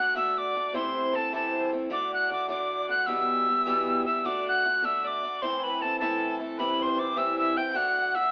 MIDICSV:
0, 0, Header, 1, 5, 480
1, 0, Start_track
1, 0, Tempo, 389864
1, 902, Time_signature, 6, 3, 24, 8
1, 10239, End_track
2, 0, Start_track
2, 0, Title_t, "Tin whistle"
2, 0, Program_c, 0, 75
2, 0, Note_on_c, 0, 90, 90
2, 198, Note_off_c, 0, 90, 0
2, 206, Note_on_c, 0, 88, 95
2, 469, Note_on_c, 0, 86, 96
2, 488, Note_off_c, 0, 88, 0
2, 915, Note_off_c, 0, 86, 0
2, 923, Note_on_c, 0, 84, 82
2, 1420, Note_on_c, 0, 81, 88
2, 1438, Note_off_c, 0, 84, 0
2, 1636, Note_off_c, 0, 81, 0
2, 1665, Note_on_c, 0, 81, 77
2, 2103, Note_off_c, 0, 81, 0
2, 2376, Note_on_c, 0, 86, 94
2, 2606, Note_off_c, 0, 86, 0
2, 2640, Note_on_c, 0, 90, 80
2, 2837, Note_off_c, 0, 90, 0
2, 2863, Note_on_c, 0, 86, 88
2, 3063, Note_off_c, 0, 86, 0
2, 3079, Note_on_c, 0, 86, 85
2, 3530, Note_off_c, 0, 86, 0
2, 3569, Note_on_c, 0, 90, 91
2, 3772, Note_on_c, 0, 88, 100
2, 3791, Note_off_c, 0, 90, 0
2, 4992, Note_off_c, 0, 88, 0
2, 4998, Note_on_c, 0, 88, 83
2, 5242, Note_on_c, 0, 86, 78
2, 5260, Note_off_c, 0, 88, 0
2, 5498, Note_off_c, 0, 86, 0
2, 5521, Note_on_c, 0, 90, 92
2, 5973, Note_on_c, 0, 88, 91
2, 5991, Note_off_c, 0, 90, 0
2, 6246, Note_on_c, 0, 86, 90
2, 6264, Note_off_c, 0, 88, 0
2, 6630, Note_off_c, 0, 86, 0
2, 6630, Note_on_c, 0, 86, 88
2, 6673, Note_on_c, 0, 84, 90
2, 6691, Note_off_c, 0, 86, 0
2, 6937, Note_on_c, 0, 83, 77
2, 6956, Note_off_c, 0, 84, 0
2, 7165, Note_on_c, 0, 81, 88
2, 7183, Note_off_c, 0, 83, 0
2, 7371, Note_off_c, 0, 81, 0
2, 7378, Note_on_c, 0, 81, 86
2, 7824, Note_off_c, 0, 81, 0
2, 8108, Note_on_c, 0, 83, 92
2, 8401, Note_on_c, 0, 84, 87
2, 8420, Note_off_c, 0, 83, 0
2, 8610, Note_on_c, 0, 86, 98
2, 8628, Note_off_c, 0, 84, 0
2, 8840, Note_on_c, 0, 88, 88
2, 8858, Note_off_c, 0, 86, 0
2, 9089, Note_off_c, 0, 88, 0
2, 9096, Note_on_c, 0, 88, 90
2, 9322, Note_on_c, 0, 91, 87
2, 9341, Note_off_c, 0, 88, 0
2, 9555, Note_on_c, 0, 90, 90
2, 9574, Note_off_c, 0, 91, 0
2, 10034, Note_on_c, 0, 88, 97
2, 10052, Note_off_c, 0, 90, 0
2, 10239, Note_off_c, 0, 88, 0
2, 10239, End_track
3, 0, Start_track
3, 0, Title_t, "Fiddle"
3, 0, Program_c, 1, 110
3, 0, Note_on_c, 1, 78, 77
3, 181, Note_on_c, 1, 76, 73
3, 200, Note_off_c, 1, 78, 0
3, 359, Note_off_c, 1, 76, 0
3, 359, Note_on_c, 1, 76, 58
3, 458, Note_on_c, 1, 74, 88
3, 477, Note_off_c, 1, 76, 0
3, 911, Note_on_c, 1, 72, 85
3, 930, Note_off_c, 1, 74, 0
3, 1391, Note_on_c, 1, 69, 71
3, 1409, Note_off_c, 1, 72, 0
3, 1614, Note_off_c, 1, 69, 0
3, 1621, Note_on_c, 1, 69, 72
3, 1867, Note_off_c, 1, 69, 0
3, 1887, Note_on_c, 1, 72, 77
3, 2100, Note_off_c, 1, 72, 0
3, 2338, Note_on_c, 1, 74, 75
3, 2586, Note_off_c, 1, 74, 0
3, 2601, Note_on_c, 1, 78, 70
3, 2821, Note_on_c, 1, 74, 77
3, 2840, Note_off_c, 1, 78, 0
3, 3054, Note_off_c, 1, 74, 0
3, 3061, Note_on_c, 1, 74, 71
3, 3548, Note_on_c, 1, 78, 78
3, 3566, Note_off_c, 1, 74, 0
3, 3780, Note_on_c, 1, 76, 73
3, 3798, Note_off_c, 1, 78, 0
3, 4992, Note_off_c, 1, 76, 0
3, 4999, Note_on_c, 1, 76, 67
3, 5212, Note_off_c, 1, 76, 0
3, 5231, Note_on_c, 1, 74, 82
3, 5492, Note_on_c, 1, 78, 78
3, 5510, Note_off_c, 1, 74, 0
3, 5943, Note_off_c, 1, 78, 0
3, 5951, Note_on_c, 1, 76, 80
3, 6204, Note_on_c, 1, 74, 85
3, 6222, Note_off_c, 1, 76, 0
3, 6669, Note_on_c, 1, 72, 80
3, 6688, Note_off_c, 1, 74, 0
3, 6931, Note_off_c, 1, 72, 0
3, 6937, Note_on_c, 1, 71, 72
3, 7150, Note_on_c, 1, 69, 70
3, 7168, Note_off_c, 1, 71, 0
3, 7380, Note_off_c, 1, 69, 0
3, 7387, Note_on_c, 1, 69, 72
3, 8100, Note_on_c, 1, 71, 83
3, 8119, Note_off_c, 1, 69, 0
3, 8366, Note_off_c, 1, 71, 0
3, 8373, Note_on_c, 1, 72, 80
3, 8819, Note_on_c, 1, 76, 83
3, 8838, Note_off_c, 1, 72, 0
3, 9081, Note_off_c, 1, 76, 0
3, 9088, Note_on_c, 1, 76, 101
3, 9318, Note_on_c, 1, 79, 84
3, 9337, Note_off_c, 1, 76, 0
3, 9462, Note_off_c, 1, 79, 0
3, 9473, Note_on_c, 1, 79, 60
3, 9549, Note_on_c, 1, 78, 101
3, 9568, Note_off_c, 1, 79, 0
3, 10036, Note_on_c, 1, 76, 90
3, 10055, Note_off_c, 1, 78, 0
3, 10239, Note_off_c, 1, 76, 0
3, 10239, End_track
4, 0, Start_track
4, 0, Title_t, "Harp"
4, 0, Program_c, 2, 46
4, 0, Note_on_c, 2, 74, 82
4, 0, Note_on_c, 2, 76, 81
4, 0, Note_on_c, 2, 78, 88
4, 170, Note_off_c, 2, 76, 0
4, 175, Note_on_c, 2, 76, 84
4, 425, Note_off_c, 2, 74, 0
4, 429, Note_on_c, 2, 74, 72
4, 893, Note_on_c, 2, 72, 74
4, 1396, Note_on_c, 2, 69, 75
4, 1633, Note_off_c, 2, 69, 0
4, 1638, Note_on_c, 2, 69, 73
4, 1697, Note_off_c, 2, 78, 0
4, 1879, Note_off_c, 2, 72, 0
4, 1884, Note_on_c, 2, 72, 65
4, 2296, Note_off_c, 2, 76, 0
4, 2357, Note_off_c, 2, 74, 0
4, 2362, Note_on_c, 2, 74, 76
4, 2616, Note_on_c, 2, 78, 83
4, 2838, Note_off_c, 2, 74, 0
4, 2843, Note_on_c, 2, 74, 81
4, 3068, Note_off_c, 2, 74, 0
4, 3072, Note_on_c, 2, 74, 81
4, 3551, Note_off_c, 2, 78, 0
4, 3556, Note_on_c, 2, 78, 70
4, 3786, Note_on_c, 2, 76, 75
4, 4321, Note_off_c, 2, 72, 0
4, 4342, Note_off_c, 2, 69, 0
4, 5008, Note_off_c, 2, 76, 0
4, 5013, Note_on_c, 2, 76, 72
4, 5230, Note_off_c, 2, 74, 0
4, 5235, Note_on_c, 2, 74, 78
4, 5486, Note_off_c, 2, 78, 0
4, 5491, Note_on_c, 2, 78, 78
4, 5940, Note_off_c, 2, 76, 0
4, 5945, Note_on_c, 2, 76, 88
4, 6210, Note_off_c, 2, 74, 0
4, 6214, Note_on_c, 2, 74, 68
4, 6453, Note_off_c, 2, 74, 0
4, 6458, Note_on_c, 2, 74, 65
4, 6679, Note_on_c, 2, 72, 77
4, 6949, Note_on_c, 2, 71, 81
4, 7023, Note_off_c, 2, 72, 0
4, 7176, Note_on_c, 2, 69, 65
4, 7399, Note_off_c, 2, 69, 0
4, 7404, Note_on_c, 2, 69, 79
4, 7470, Note_off_c, 2, 78, 0
4, 8067, Note_off_c, 2, 76, 0
4, 8108, Note_off_c, 2, 71, 0
4, 8113, Note_on_c, 2, 71, 93
4, 8369, Note_on_c, 2, 72, 82
4, 8443, Note_off_c, 2, 71, 0
4, 8586, Note_off_c, 2, 74, 0
4, 8591, Note_on_c, 2, 74, 85
4, 8820, Note_on_c, 2, 76, 99
4, 9065, Note_off_c, 2, 76, 0
4, 9070, Note_on_c, 2, 76, 84
4, 9319, Note_on_c, 2, 79, 90
4, 9537, Note_on_c, 2, 78, 93
4, 9611, Note_off_c, 2, 79, 0
4, 9719, Note_off_c, 2, 78, 0
4, 9871, Note_on_c, 2, 78, 101
4, 10020, Note_off_c, 2, 76, 0
4, 10025, Note_on_c, 2, 76, 87
4, 10108, Note_off_c, 2, 69, 0
4, 10239, Note_off_c, 2, 72, 0
4, 10239, Note_off_c, 2, 74, 0
4, 10239, Note_off_c, 2, 76, 0
4, 10239, Note_off_c, 2, 78, 0
4, 10239, End_track
5, 0, Start_track
5, 0, Title_t, "Steel-string acoustic guitar"
5, 0, Program_c, 3, 25
5, 0, Note_on_c, 3, 50, 52
5, 0, Note_on_c, 3, 57, 58
5, 0, Note_on_c, 3, 62, 58
5, 0, Note_on_c, 3, 66, 63
5, 170, Note_off_c, 3, 50, 0
5, 176, Note_off_c, 3, 57, 0
5, 180, Note_off_c, 3, 62, 0
5, 185, Note_on_c, 3, 50, 69
5, 187, Note_off_c, 3, 66, 0
5, 191, Note_on_c, 3, 57, 86
5, 195, Note_on_c, 3, 62, 88
5, 201, Note_on_c, 3, 66, 95
5, 662, Note_off_c, 3, 50, 0
5, 677, Note_off_c, 3, 57, 0
5, 677, Note_off_c, 3, 62, 0
5, 677, Note_on_c, 3, 50, 52
5, 682, Note_on_c, 3, 57, 56
5, 684, Note_off_c, 3, 66, 0
5, 692, Note_on_c, 3, 62, 53
5, 701, Note_on_c, 3, 66, 63
5, 898, Note_off_c, 3, 57, 0
5, 904, Note_off_c, 3, 50, 0
5, 904, Note_on_c, 3, 48, 79
5, 912, Note_off_c, 3, 62, 0
5, 913, Note_on_c, 3, 52, 82
5, 913, Note_on_c, 3, 57, 92
5, 916, Note_off_c, 3, 66, 0
5, 922, Note_on_c, 3, 64, 90
5, 923, Note_on_c, 3, 60, 86
5, 1380, Note_off_c, 3, 52, 0
5, 1389, Note_off_c, 3, 57, 0
5, 1395, Note_off_c, 3, 48, 0
5, 1395, Note_on_c, 3, 52, 47
5, 1399, Note_off_c, 3, 60, 0
5, 1404, Note_on_c, 3, 57, 61
5, 1405, Note_off_c, 3, 64, 0
5, 1414, Note_on_c, 3, 60, 56
5, 1424, Note_on_c, 3, 64, 56
5, 1619, Note_off_c, 3, 52, 0
5, 1622, Note_off_c, 3, 57, 0
5, 1627, Note_on_c, 3, 48, 74
5, 1629, Note_off_c, 3, 60, 0
5, 1633, Note_on_c, 3, 52, 75
5, 1637, Note_on_c, 3, 57, 85
5, 1638, Note_off_c, 3, 64, 0
5, 1644, Note_on_c, 3, 60, 74
5, 1651, Note_on_c, 3, 64, 82
5, 2096, Note_off_c, 3, 52, 0
5, 2109, Note_off_c, 3, 57, 0
5, 2111, Note_on_c, 3, 52, 56
5, 2117, Note_off_c, 3, 48, 0
5, 2117, Note_off_c, 3, 60, 0
5, 2123, Note_on_c, 3, 57, 58
5, 2126, Note_off_c, 3, 64, 0
5, 2132, Note_on_c, 3, 60, 59
5, 2140, Note_on_c, 3, 64, 57
5, 2328, Note_off_c, 3, 57, 0
5, 2334, Note_off_c, 3, 52, 0
5, 2339, Note_on_c, 3, 50, 89
5, 2343, Note_on_c, 3, 57, 89
5, 2344, Note_off_c, 3, 60, 0
5, 2349, Note_on_c, 3, 62, 82
5, 2351, Note_off_c, 3, 64, 0
5, 2356, Note_on_c, 3, 66, 81
5, 2818, Note_off_c, 3, 50, 0
5, 2832, Note_on_c, 3, 50, 55
5, 2836, Note_off_c, 3, 57, 0
5, 2836, Note_off_c, 3, 62, 0
5, 2842, Note_off_c, 3, 66, 0
5, 2850, Note_on_c, 3, 57, 57
5, 2851, Note_on_c, 3, 62, 56
5, 2863, Note_on_c, 3, 66, 51
5, 3043, Note_off_c, 3, 50, 0
5, 3049, Note_off_c, 3, 57, 0
5, 3058, Note_on_c, 3, 50, 86
5, 3060, Note_off_c, 3, 62, 0
5, 3064, Note_on_c, 3, 57, 83
5, 3065, Note_off_c, 3, 66, 0
5, 3075, Note_on_c, 3, 62, 81
5, 3079, Note_on_c, 3, 66, 75
5, 3544, Note_off_c, 3, 50, 0
5, 3556, Note_off_c, 3, 57, 0
5, 3559, Note_on_c, 3, 50, 59
5, 3562, Note_off_c, 3, 62, 0
5, 3564, Note_off_c, 3, 66, 0
5, 3572, Note_on_c, 3, 57, 52
5, 3581, Note_on_c, 3, 62, 58
5, 3582, Note_on_c, 3, 66, 53
5, 3779, Note_off_c, 3, 50, 0
5, 3779, Note_on_c, 3, 40, 85
5, 3780, Note_on_c, 3, 47, 85
5, 3784, Note_on_c, 3, 52, 72
5, 3789, Note_off_c, 3, 57, 0
5, 3793, Note_off_c, 3, 66, 0
5, 3794, Note_off_c, 3, 62, 0
5, 3794, Note_on_c, 3, 55, 79
5, 3798, Note_on_c, 3, 67, 93
5, 3799, Note_on_c, 3, 59, 86
5, 4260, Note_off_c, 3, 52, 0
5, 4270, Note_off_c, 3, 55, 0
5, 4274, Note_off_c, 3, 40, 0
5, 4275, Note_off_c, 3, 47, 0
5, 4275, Note_off_c, 3, 59, 0
5, 4275, Note_on_c, 3, 52, 57
5, 4284, Note_off_c, 3, 67, 0
5, 4285, Note_on_c, 3, 55, 54
5, 4290, Note_on_c, 3, 59, 57
5, 4306, Note_on_c, 3, 67, 59
5, 4498, Note_off_c, 3, 52, 0
5, 4500, Note_off_c, 3, 55, 0
5, 4503, Note_off_c, 3, 59, 0
5, 4505, Note_on_c, 3, 47, 87
5, 4506, Note_on_c, 3, 40, 82
5, 4508, Note_off_c, 3, 67, 0
5, 4513, Note_on_c, 3, 52, 94
5, 4515, Note_on_c, 3, 55, 91
5, 4518, Note_on_c, 3, 59, 90
5, 4522, Note_on_c, 3, 67, 108
5, 4978, Note_off_c, 3, 52, 0
5, 4989, Note_off_c, 3, 55, 0
5, 4993, Note_on_c, 3, 52, 47
5, 4996, Note_off_c, 3, 59, 0
5, 4998, Note_off_c, 3, 40, 0
5, 4998, Note_off_c, 3, 47, 0
5, 5004, Note_on_c, 3, 55, 58
5, 5006, Note_off_c, 3, 67, 0
5, 5011, Note_on_c, 3, 59, 54
5, 5027, Note_on_c, 3, 67, 58
5, 5216, Note_off_c, 3, 52, 0
5, 5221, Note_on_c, 3, 50, 80
5, 5227, Note_off_c, 3, 55, 0
5, 5232, Note_off_c, 3, 59, 0
5, 5232, Note_on_c, 3, 57, 94
5, 5236, Note_off_c, 3, 67, 0
5, 5237, Note_on_c, 3, 62, 92
5, 5240, Note_on_c, 3, 66, 101
5, 5703, Note_off_c, 3, 50, 0
5, 5711, Note_off_c, 3, 57, 0
5, 5717, Note_on_c, 3, 50, 59
5, 5724, Note_off_c, 3, 62, 0
5, 5726, Note_off_c, 3, 66, 0
5, 5726, Note_on_c, 3, 57, 58
5, 5738, Note_on_c, 3, 62, 52
5, 5746, Note_on_c, 3, 66, 67
5, 5924, Note_off_c, 3, 50, 0
5, 5935, Note_off_c, 3, 57, 0
5, 5938, Note_off_c, 3, 62, 0
5, 5938, Note_on_c, 3, 50, 75
5, 5948, Note_off_c, 3, 66, 0
5, 5949, Note_on_c, 3, 57, 73
5, 5952, Note_on_c, 3, 62, 82
5, 5963, Note_on_c, 3, 66, 73
5, 6422, Note_off_c, 3, 50, 0
5, 6431, Note_off_c, 3, 57, 0
5, 6437, Note_on_c, 3, 50, 52
5, 6442, Note_off_c, 3, 62, 0
5, 6446, Note_on_c, 3, 57, 54
5, 6447, Note_off_c, 3, 66, 0
5, 6457, Note_on_c, 3, 62, 63
5, 6463, Note_on_c, 3, 66, 55
5, 6666, Note_off_c, 3, 50, 0
5, 6668, Note_off_c, 3, 57, 0
5, 6674, Note_on_c, 3, 45, 83
5, 6676, Note_off_c, 3, 62, 0
5, 6679, Note_off_c, 3, 66, 0
5, 6680, Note_on_c, 3, 52, 94
5, 6683, Note_on_c, 3, 57, 89
5, 6684, Note_on_c, 3, 60, 91
5, 6693, Note_on_c, 3, 64, 85
5, 7151, Note_off_c, 3, 52, 0
5, 7162, Note_off_c, 3, 45, 0
5, 7162, Note_off_c, 3, 57, 0
5, 7166, Note_on_c, 3, 52, 55
5, 7167, Note_off_c, 3, 60, 0
5, 7172, Note_off_c, 3, 64, 0
5, 7177, Note_on_c, 3, 57, 53
5, 7180, Note_on_c, 3, 60, 56
5, 7189, Note_on_c, 3, 64, 60
5, 7384, Note_off_c, 3, 52, 0
5, 7388, Note_off_c, 3, 57, 0
5, 7397, Note_off_c, 3, 64, 0
5, 7397, Note_on_c, 3, 45, 86
5, 7398, Note_off_c, 3, 60, 0
5, 7399, Note_on_c, 3, 52, 89
5, 7403, Note_on_c, 3, 57, 80
5, 7412, Note_on_c, 3, 60, 87
5, 7412, Note_on_c, 3, 64, 92
5, 7856, Note_off_c, 3, 52, 0
5, 7863, Note_off_c, 3, 57, 0
5, 7871, Note_on_c, 3, 52, 52
5, 7876, Note_off_c, 3, 60, 0
5, 7878, Note_on_c, 3, 57, 58
5, 7883, Note_off_c, 3, 45, 0
5, 7886, Note_off_c, 3, 64, 0
5, 7891, Note_on_c, 3, 60, 55
5, 7901, Note_on_c, 3, 64, 60
5, 8103, Note_off_c, 3, 52, 0
5, 8107, Note_off_c, 3, 57, 0
5, 8107, Note_off_c, 3, 60, 0
5, 8111, Note_on_c, 3, 48, 82
5, 8112, Note_off_c, 3, 64, 0
5, 8117, Note_on_c, 3, 52, 88
5, 8120, Note_on_c, 3, 55, 84
5, 8122, Note_on_c, 3, 60, 91
5, 8127, Note_on_c, 3, 64, 79
5, 8579, Note_off_c, 3, 52, 0
5, 8592, Note_off_c, 3, 55, 0
5, 8594, Note_on_c, 3, 52, 47
5, 8599, Note_off_c, 3, 60, 0
5, 8600, Note_off_c, 3, 48, 0
5, 8607, Note_on_c, 3, 55, 52
5, 8608, Note_off_c, 3, 64, 0
5, 8614, Note_on_c, 3, 60, 70
5, 8622, Note_on_c, 3, 64, 61
5, 8808, Note_off_c, 3, 52, 0
5, 8812, Note_off_c, 3, 55, 0
5, 8814, Note_off_c, 3, 60, 0
5, 8818, Note_on_c, 3, 48, 84
5, 8822, Note_off_c, 3, 64, 0
5, 8822, Note_on_c, 3, 52, 80
5, 8827, Note_on_c, 3, 55, 83
5, 8828, Note_on_c, 3, 60, 95
5, 8837, Note_on_c, 3, 64, 84
5, 9298, Note_off_c, 3, 52, 0
5, 9309, Note_off_c, 3, 55, 0
5, 9312, Note_off_c, 3, 48, 0
5, 9313, Note_on_c, 3, 52, 56
5, 9318, Note_off_c, 3, 60, 0
5, 9322, Note_off_c, 3, 64, 0
5, 9324, Note_on_c, 3, 55, 51
5, 9331, Note_on_c, 3, 60, 57
5, 9339, Note_on_c, 3, 64, 67
5, 9529, Note_off_c, 3, 52, 0
5, 9534, Note_on_c, 3, 50, 84
5, 9536, Note_off_c, 3, 55, 0
5, 9540, Note_on_c, 3, 57, 89
5, 9544, Note_off_c, 3, 60, 0
5, 9546, Note_off_c, 3, 64, 0
5, 9548, Note_on_c, 3, 62, 91
5, 9551, Note_on_c, 3, 66, 92
5, 10010, Note_off_c, 3, 50, 0
5, 10024, Note_on_c, 3, 50, 52
5, 10034, Note_off_c, 3, 57, 0
5, 10034, Note_off_c, 3, 62, 0
5, 10038, Note_off_c, 3, 66, 0
5, 10039, Note_on_c, 3, 57, 51
5, 10049, Note_on_c, 3, 62, 52
5, 10057, Note_on_c, 3, 66, 52
5, 10239, Note_off_c, 3, 50, 0
5, 10239, Note_off_c, 3, 57, 0
5, 10239, Note_off_c, 3, 62, 0
5, 10239, Note_off_c, 3, 66, 0
5, 10239, End_track
0, 0, End_of_file